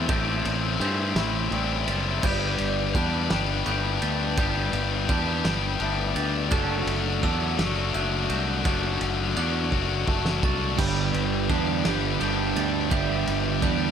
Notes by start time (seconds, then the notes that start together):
Already playing: G3 C4 E4 A5
0.08 A1 A2 E3 A3 C4 E4 G6, kick, ride
0.45 A1, ride
0.79 G2 A2 E3 A3 C4 E4 G6, ride
1.15 A1 A2 E3 A3 C4 E4, snare, ride
1.51 A1 A2 E3 G3 A3 C4 E4, ride
1.86 F#1 E4 A6, ride
2.23 G1 G3 B3 D4 G4 B4 D5 G6, kick, crash
2.58 G1, ride
2.94 E2 G3 B3 D4 G4 F#6, kick, ride
3.30 G1 G3 B3 D4 G4, snare, ride
3.65 G1 G3 A3 B3 D4 G4 G6, ride
4.02 D2 G4 A6, ride
4.37 G1 G3 B3 D4 G4 G6, kick, ride
4.73 G1, ride
5.09 E2 G3 B3 D4 G4 G6, kick, ride
5.45 G1 G3 B3 D4 G4, snare, ride
5.80 G1 G3 A3 B3 D4 G4, ride
6.16 D2 G4 A6, ride
6.51 F#1 F#3 A3 D4 F#4 A4 A5 F#6, kick, ride
6.87 F#1, ride
7.23 E2 F#3 A3 D4 F#4 E6, kick, ride
7.58 F#1 F#3 A3 D4 F#4, snare, ride
7.94 F#1 F#3 A3 D4 F#4 F#6, ride
8.30 C2 F#4 G6, ride
8.65 F#1 F#3 A3 D4 F#4 F#6, kick, ride
9.01 F#1, ride
9.37 E2 F#3 A3 D4 F#4 F#6, ride
9.72 F#1 F#3 A3 D4 F#4, kick
10.06 F#1 F#3 A3 D4 F#4, kick
10.26 snare
10.43 C2 F#4 A6, kick
10.77 G1 G2 D3 G3 B3 D4 G4 B4 G6, kick, splash, crash
11.14 G1, ride
11.50 E2 G2 D3 G3 B3 D4 G4 F#6, kick, ride
11.85 G1 G2 D3 G3 B3 D4 G4, snare, ride
12.20 G1 G2 D3 G3 A3 B3 D4 G4 G6, ride
12.56 D2 G4 A6, ride
12.91 G1 G2 D3 G3 B3 D4 G4 E5 G6, kick, ride
13.27 G1, ride
13.61 E2 G2 D3 G3 B3 D4 G4 G6, kick, ride